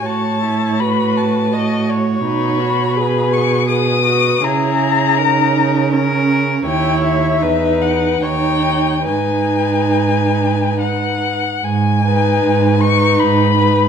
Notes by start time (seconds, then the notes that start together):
0.04 A2 F#4 C#5 A5
0.42 E4
0.79 F#4 B4 B5
1.17 A5
1.53 F#4 D#5
1.89 C#5
2.24 B2 D#4 B5
2.59 F#4
2.96 G#4 B4
3.33 C#6
3.68 G#4 B4 D#6
4.04 F#4
4.42 C#3 E4 G#4 A#5
5.17 D#4 A#4
5.92 C#4 A#4
6.65 D#2 E4 C#5 G5
7.04 E5
7.41 E2 D#4 B4
7.81 F#5
8.22 D#2 D#4 C#5 G5
9.07 G#2 D#4 B4 G#5
10.80 F#5
11.64 G#2 G#5
12.03 D#4 B4
12.43 G#2
12.81 D#4 B4 C#6
13.19 G#2 B5
13.57 D#4 B4